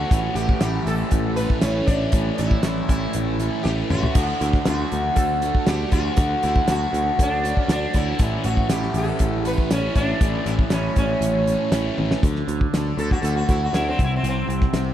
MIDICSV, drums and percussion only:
0, 0, Header, 1, 2, 480
1, 0, Start_track
1, 0, Key_signature, 3, "major"
1, 0, Tempo, 504626
1, 107, Time_signature, 4, 2, 24, 8
1, 14208, End_track
2, 0, Start_track
2, 0, Title_t, "Drums"
2, 105, Note_on_c, 9, 36, 115
2, 109, Note_on_c, 9, 42, 99
2, 201, Note_off_c, 9, 36, 0
2, 204, Note_off_c, 9, 42, 0
2, 341, Note_on_c, 9, 42, 77
2, 436, Note_off_c, 9, 42, 0
2, 465, Note_on_c, 9, 36, 82
2, 560, Note_off_c, 9, 36, 0
2, 577, Note_on_c, 9, 42, 99
2, 578, Note_on_c, 9, 38, 113
2, 672, Note_off_c, 9, 42, 0
2, 673, Note_off_c, 9, 38, 0
2, 825, Note_on_c, 9, 42, 72
2, 920, Note_off_c, 9, 42, 0
2, 1055, Note_on_c, 9, 42, 86
2, 1063, Note_on_c, 9, 36, 76
2, 1150, Note_off_c, 9, 42, 0
2, 1159, Note_off_c, 9, 36, 0
2, 1302, Note_on_c, 9, 42, 75
2, 1397, Note_off_c, 9, 42, 0
2, 1426, Note_on_c, 9, 36, 68
2, 1521, Note_off_c, 9, 36, 0
2, 1536, Note_on_c, 9, 42, 97
2, 1537, Note_on_c, 9, 38, 110
2, 1631, Note_off_c, 9, 42, 0
2, 1632, Note_off_c, 9, 38, 0
2, 1784, Note_on_c, 9, 42, 70
2, 1786, Note_on_c, 9, 36, 82
2, 1879, Note_off_c, 9, 42, 0
2, 1881, Note_off_c, 9, 36, 0
2, 2016, Note_on_c, 9, 42, 99
2, 2025, Note_on_c, 9, 36, 109
2, 2112, Note_off_c, 9, 42, 0
2, 2121, Note_off_c, 9, 36, 0
2, 2265, Note_on_c, 9, 42, 81
2, 2360, Note_off_c, 9, 42, 0
2, 2388, Note_on_c, 9, 36, 79
2, 2483, Note_off_c, 9, 36, 0
2, 2500, Note_on_c, 9, 42, 101
2, 2501, Note_on_c, 9, 38, 115
2, 2595, Note_off_c, 9, 42, 0
2, 2596, Note_off_c, 9, 38, 0
2, 2751, Note_on_c, 9, 36, 81
2, 2751, Note_on_c, 9, 42, 80
2, 2846, Note_off_c, 9, 36, 0
2, 2846, Note_off_c, 9, 42, 0
2, 2980, Note_on_c, 9, 42, 102
2, 3076, Note_off_c, 9, 42, 0
2, 3229, Note_on_c, 9, 42, 75
2, 3324, Note_off_c, 9, 42, 0
2, 3476, Note_on_c, 9, 38, 64
2, 3571, Note_off_c, 9, 38, 0
2, 3714, Note_on_c, 9, 45, 92
2, 3809, Note_off_c, 9, 45, 0
2, 3835, Note_on_c, 9, 43, 93
2, 3930, Note_off_c, 9, 43, 0
2, 3947, Note_on_c, 9, 42, 105
2, 3947, Note_on_c, 9, 49, 92
2, 3951, Note_on_c, 9, 36, 120
2, 4042, Note_off_c, 9, 42, 0
2, 4042, Note_off_c, 9, 49, 0
2, 4046, Note_off_c, 9, 36, 0
2, 4197, Note_on_c, 9, 42, 81
2, 4292, Note_off_c, 9, 42, 0
2, 4313, Note_on_c, 9, 36, 84
2, 4314, Note_on_c, 9, 38, 35
2, 4408, Note_off_c, 9, 36, 0
2, 4409, Note_off_c, 9, 38, 0
2, 4427, Note_on_c, 9, 42, 99
2, 4428, Note_on_c, 9, 38, 116
2, 4522, Note_off_c, 9, 42, 0
2, 4523, Note_off_c, 9, 38, 0
2, 4676, Note_on_c, 9, 42, 70
2, 4771, Note_off_c, 9, 42, 0
2, 4909, Note_on_c, 9, 42, 87
2, 4914, Note_on_c, 9, 36, 79
2, 5004, Note_off_c, 9, 42, 0
2, 5009, Note_off_c, 9, 36, 0
2, 5155, Note_on_c, 9, 42, 73
2, 5250, Note_off_c, 9, 42, 0
2, 5276, Note_on_c, 9, 36, 70
2, 5371, Note_off_c, 9, 36, 0
2, 5389, Note_on_c, 9, 42, 92
2, 5390, Note_on_c, 9, 38, 108
2, 5484, Note_off_c, 9, 42, 0
2, 5485, Note_off_c, 9, 38, 0
2, 5628, Note_on_c, 9, 42, 73
2, 5633, Note_on_c, 9, 36, 84
2, 5723, Note_off_c, 9, 42, 0
2, 5728, Note_off_c, 9, 36, 0
2, 5864, Note_on_c, 9, 42, 103
2, 5875, Note_on_c, 9, 36, 118
2, 5959, Note_off_c, 9, 42, 0
2, 5970, Note_off_c, 9, 36, 0
2, 6113, Note_on_c, 9, 42, 76
2, 6208, Note_off_c, 9, 42, 0
2, 6237, Note_on_c, 9, 36, 85
2, 6332, Note_off_c, 9, 36, 0
2, 6350, Note_on_c, 9, 42, 104
2, 6351, Note_on_c, 9, 38, 112
2, 6445, Note_off_c, 9, 42, 0
2, 6446, Note_off_c, 9, 38, 0
2, 6604, Note_on_c, 9, 42, 78
2, 6699, Note_off_c, 9, 42, 0
2, 6840, Note_on_c, 9, 36, 83
2, 6844, Note_on_c, 9, 42, 96
2, 6935, Note_off_c, 9, 36, 0
2, 6939, Note_off_c, 9, 42, 0
2, 7085, Note_on_c, 9, 42, 76
2, 7181, Note_off_c, 9, 42, 0
2, 7200, Note_on_c, 9, 36, 68
2, 7295, Note_off_c, 9, 36, 0
2, 7317, Note_on_c, 9, 42, 99
2, 7318, Note_on_c, 9, 38, 111
2, 7412, Note_off_c, 9, 42, 0
2, 7413, Note_off_c, 9, 38, 0
2, 7548, Note_on_c, 9, 42, 77
2, 7556, Note_on_c, 9, 36, 82
2, 7643, Note_off_c, 9, 42, 0
2, 7652, Note_off_c, 9, 36, 0
2, 7788, Note_on_c, 9, 42, 103
2, 7796, Note_on_c, 9, 36, 121
2, 7883, Note_off_c, 9, 42, 0
2, 7891, Note_off_c, 9, 36, 0
2, 8027, Note_on_c, 9, 42, 79
2, 8122, Note_off_c, 9, 42, 0
2, 8153, Note_on_c, 9, 36, 77
2, 8248, Note_off_c, 9, 36, 0
2, 8270, Note_on_c, 9, 42, 104
2, 8271, Note_on_c, 9, 38, 110
2, 8365, Note_off_c, 9, 42, 0
2, 8366, Note_off_c, 9, 38, 0
2, 8395, Note_on_c, 9, 38, 35
2, 8490, Note_off_c, 9, 38, 0
2, 8505, Note_on_c, 9, 42, 74
2, 8600, Note_off_c, 9, 42, 0
2, 8741, Note_on_c, 9, 42, 93
2, 8751, Note_on_c, 9, 36, 74
2, 8836, Note_off_c, 9, 42, 0
2, 8846, Note_off_c, 9, 36, 0
2, 8989, Note_on_c, 9, 42, 72
2, 9084, Note_off_c, 9, 42, 0
2, 9112, Note_on_c, 9, 36, 66
2, 9208, Note_off_c, 9, 36, 0
2, 9232, Note_on_c, 9, 42, 93
2, 9233, Note_on_c, 9, 38, 116
2, 9328, Note_off_c, 9, 42, 0
2, 9329, Note_off_c, 9, 38, 0
2, 9468, Note_on_c, 9, 42, 71
2, 9471, Note_on_c, 9, 36, 82
2, 9563, Note_off_c, 9, 42, 0
2, 9566, Note_off_c, 9, 36, 0
2, 9711, Note_on_c, 9, 36, 111
2, 9711, Note_on_c, 9, 42, 96
2, 9806, Note_off_c, 9, 36, 0
2, 9806, Note_off_c, 9, 42, 0
2, 9951, Note_on_c, 9, 42, 79
2, 10046, Note_off_c, 9, 42, 0
2, 10072, Note_on_c, 9, 36, 83
2, 10167, Note_off_c, 9, 36, 0
2, 10180, Note_on_c, 9, 42, 94
2, 10181, Note_on_c, 9, 38, 112
2, 10275, Note_off_c, 9, 42, 0
2, 10276, Note_off_c, 9, 38, 0
2, 10425, Note_on_c, 9, 42, 77
2, 10430, Note_on_c, 9, 36, 81
2, 10520, Note_off_c, 9, 42, 0
2, 10526, Note_off_c, 9, 36, 0
2, 10671, Note_on_c, 9, 42, 93
2, 10766, Note_off_c, 9, 42, 0
2, 10914, Note_on_c, 9, 42, 78
2, 11009, Note_off_c, 9, 42, 0
2, 11147, Note_on_c, 9, 42, 94
2, 11148, Note_on_c, 9, 38, 103
2, 11242, Note_off_c, 9, 42, 0
2, 11243, Note_off_c, 9, 38, 0
2, 11397, Note_on_c, 9, 48, 63
2, 11492, Note_off_c, 9, 48, 0
2, 11521, Note_on_c, 9, 38, 90
2, 11616, Note_off_c, 9, 38, 0
2, 11634, Note_on_c, 9, 36, 107
2, 11638, Note_on_c, 9, 42, 86
2, 11730, Note_off_c, 9, 36, 0
2, 11733, Note_off_c, 9, 42, 0
2, 11751, Note_on_c, 9, 38, 32
2, 11846, Note_off_c, 9, 38, 0
2, 11874, Note_on_c, 9, 42, 68
2, 11970, Note_off_c, 9, 42, 0
2, 11995, Note_on_c, 9, 36, 88
2, 12090, Note_off_c, 9, 36, 0
2, 12116, Note_on_c, 9, 38, 105
2, 12116, Note_on_c, 9, 42, 90
2, 12211, Note_off_c, 9, 42, 0
2, 12212, Note_off_c, 9, 38, 0
2, 12352, Note_on_c, 9, 42, 61
2, 12447, Note_off_c, 9, 42, 0
2, 12472, Note_on_c, 9, 36, 70
2, 12480, Note_on_c, 9, 38, 32
2, 12567, Note_off_c, 9, 36, 0
2, 12575, Note_off_c, 9, 38, 0
2, 12599, Note_on_c, 9, 42, 84
2, 12694, Note_off_c, 9, 42, 0
2, 12828, Note_on_c, 9, 42, 62
2, 12830, Note_on_c, 9, 36, 73
2, 12924, Note_off_c, 9, 42, 0
2, 12925, Note_off_c, 9, 36, 0
2, 13071, Note_on_c, 9, 42, 82
2, 13072, Note_on_c, 9, 38, 104
2, 13166, Note_off_c, 9, 42, 0
2, 13167, Note_off_c, 9, 38, 0
2, 13308, Note_on_c, 9, 36, 92
2, 13310, Note_on_c, 9, 42, 62
2, 13403, Note_off_c, 9, 36, 0
2, 13405, Note_off_c, 9, 42, 0
2, 13546, Note_on_c, 9, 42, 80
2, 13641, Note_off_c, 9, 42, 0
2, 13792, Note_on_c, 9, 42, 69
2, 13887, Note_off_c, 9, 42, 0
2, 13902, Note_on_c, 9, 38, 33
2, 13904, Note_on_c, 9, 36, 83
2, 13997, Note_off_c, 9, 38, 0
2, 13999, Note_off_c, 9, 36, 0
2, 14016, Note_on_c, 9, 42, 84
2, 14017, Note_on_c, 9, 38, 103
2, 14112, Note_off_c, 9, 42, 0
2, 14113, Note_off_c, 9, 38, 0
2, 14208, End_track
0, 0, End_of_file